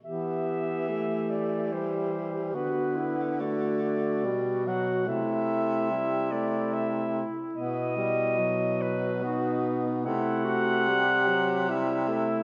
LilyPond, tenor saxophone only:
\new Staff \with { instrumentName = "Tenor saxophone" } { \time 3/4 \key e \minor \tempo 4 = 72 b4 a4 g4 | b4 a4 g8 fis8 | a4 g8 a4 r8 | b8 g8 fis4 b4 |
a4 g8 fis8 g8 a8 | }